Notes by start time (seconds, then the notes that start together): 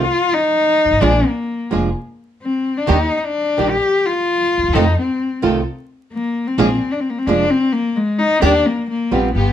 Already playing: F4
0.34 D#4
0.85 G1
0.91 G#1
0.97 A1 F3
1.02 A#1 G#3 A#3 D4 F4 G#4
1.28 A#3
1.71 F1 F3 G#3 A#3 D4 F4 G#4
2.42 C4
2.77 D4
2.87 D#2 D#3 G3 D4 D#4 G4
3.17 D#4
3.24 D4
3.57 A#1 D#3 G3 D4 D#4 G4
3.70 G4
4.05 F4
4.58 D2
4.63 D#2
4.69 E2
4.73 F2 C3 D#3 A3 C4 D#4 F4 A4
4.99 C4
5.42 C2 C3 D#3 A3 C4 D#4 F4 A4
6.12 A#3
6.47 C4
6.58 A#1 F3 G#3 A#3 D4 F4 G#4
6.92 D4
7.00 C4
7.10 A#3
7.18 C4
7.27 F1 F3 G#3 A#3 D4 F4 G#4
7.50 C4
7.72 A#3
7.96 G#3
8.19 D#4
8.42 D#2 D#3 G3 D4 D#4 G4
8.66 A#3
8.90 A#3
9.11 A#1 G3 B3 C4 D4 D#4 F4 G4
9.34 G1 B3 F4 G4